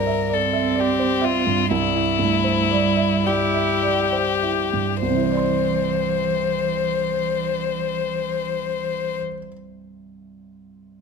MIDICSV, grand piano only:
0, 0, Header, 1, 2, 480
1, 0, Start_track
1, 0, Key_signature, 0, "major"
1, 0, Tempo, 925926
1, 892, Tempo, 998336
1, 893, Time_signature, 6, 3, 24, 8
1, 1372, Tempo, 1111111
1, 1852, Tempo, 1192843
1, 4742, End_track
2, 0, Start_track
2, 0, Title_t, "Grand piano"
2, 0, Program_c, 0, 0
2, 0, Control_c, 0, 64, 127
2, 0, Note_on_c, 0, 36, 41
2, 0, Note_on_c, 0, 43, 30
2, 0, Note_on_c, 0, 64, 31
2, 0, Note_on_c, 0, 72, 33
2, 0, Note_on_c, 0, 74, 36
2, 35, Note_on_c, 0, 76, 33
2, 117, Note_off_c, 0, 74, 0
2, 155, Note_on_c, 0, 74, 36
2, 231, Note_off_c, 0, 76, 0
2, 277, Note_on_c, 0, 76, 38
2, 351, Note_off_c, 0, 74, 0
2, 391, Note_on_c, 0, 74, 38
2, 472, Note_off_c, 0, 76, 0
2, 514, Note_off_c, 0, 72, 0
2, 514, Note_on_c, 0, 72, 37
2, 591, Note_off_c, 0, 74, 0
2, 629, Note_on_c, 0, 76, 40
2, 714, Note_off_c, 0, 72, 0
2, 760, Note_off_c, 0, 43, 0
2, 760, Note_on_c, 0, 43, 36
2, 835, Note_off_c, 0, 76, 0
2, 868, Note_off_c, 0, 36, 0
2, 885, Note_on_c, 0, 36, 49
2, 902, Control_c, 0, 64, 0
2, 903, Note_off_c, 0, 64, 0
2, 958, Note_off_c, 0, 43, 0
2, 989, Control_c, 0, 64, 127
2, 1003, Note_on_c, 0, 64, 38
2, 1119, Note_on_c, 0, 43, 38
2, 1197, Note_off_c, 0, 64, 0
2, 1238, Note_on_c, 0, 72, 37
2, 1318, Note_off_c, 0, 43, 0
2, 1369, Note_on_c, 0, 74, 45
2, 1437, Note_off_c, 0, 72, 0
2, 1480, Note_on_c, 0, 76, 38
2, 1557, Note_off_c, 0, 74, 0
2, 1597, Note_on_c, 0, 74, 36
2, 1675, Note_off_c, 0, 76, 0
2, 1726, Note_on_c, 0, 76, 32
2, 1798, Note_off_c, 0, 74, 0
2, 1850, Note_on_c, 0, 74, 35
2, 1923, Note_off_c, 0, 76, 0
2, 1970, Note_on_c, 0, 72, 28
2, 2043, Note_off_c, 0, 74, 0
2, 2092, Note_on_c, 0, 64, 31
2, 2166, Note_off_c, 0, 72, 0
2, 2215, Note_on_c, 0, 43, 25
2, 2287, Note_off_c, 0, 64, 0
2, 2316, Note_off_c, 0, 36, 0
2, 2333, Note_on_c, 0, 36, 31
2, 2335, Note_off_c, 0, 43, 0
2, 2345, Control_c, 0, 64, 0
2, 2362, Note_on_c, 0, 48, 28
2, 2389, Note_on_c, 0, 64, 28
2, 2416, Note_on_c, 0, 72, 28
2, 2434, Control_c, 0, 64, 127
2, 2443, Note_on_c, 0, 74, 29
2, 2472, Note_on_c, 0, 84, 30
2, 4005, Note_off_c, 0, 36, 0
2, 4034, Note_off_c, 0, 48, 0
2, 4062, Note_off_c, 0, 64, 0
2, 4088, Note_off_c, 0, 72, 0
2, 4116, Note_off_c, 0, 74, 0
2, 4144, Note_off_c, 0, 84, 0
2, 4742, End_track
0, 0, End_of_file